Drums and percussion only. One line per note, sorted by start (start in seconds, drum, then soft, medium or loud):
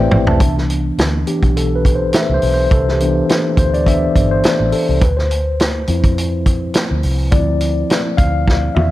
0.11 mid tom medium
0.27 floor tom medium
0.40 kick loud
0.40 closed hi-hat medium
0.58 snare soft
0.70 closed hi-hat medium
0.98 snare loud
0.98 closed hi-hat medium
1.27 closed hi-hat medium
1.43 kick medium
1.43 closed hi-hat soft
1.57 closed hi-hat medium
1.85 kick medium
1.85 closed hi-hat medium
2.13 snare loud
2.13 closed hi-hat medium
2.42 open hi-hat medium
2.71 kick loud
2.71 closed hi-hat medium
2.88 snare soft
3.00 closed hi-hat medium
3.29 snare loud
3.29 closed hi-hat medium
3.57 kick medium
3.57 closed hi-hat medium
3.74 closed hi-hat soft
3.86 kick medium
3.86 closed hi-hat medium
4.16 kick medium
4.16 closed hi-hat medium
4.44 snare loud
4.44 closed hi-hat medium
4.72 open hi-hat medium
5.01 kick loud
5.01 closed hi-hat medium
5.18 snare soft
5.31 closed hi-hat medium
5.60 snare loud
5.60 closed hi-hat medium
5.87 closed hi-hat medium
6.04 kick medium
6.04 closed hi-hat soft
6.18 closed hi-hat medium
6.46 kick medium
6.46 closed hi-hat medium
6.74 snare loud
6.74 closed hi-hat medium
7.03 open hi-hat medium
7.32 kick loud
7.32 closed hi-hat medium
7.61 closed hi-hat medium
7.90 snare medium
7.90 closed hi-hat medium
8.18 kick medium
8.18 closed hi-hat medium
8.48 kick medium
8.48 snare medium
8.76 high tom medium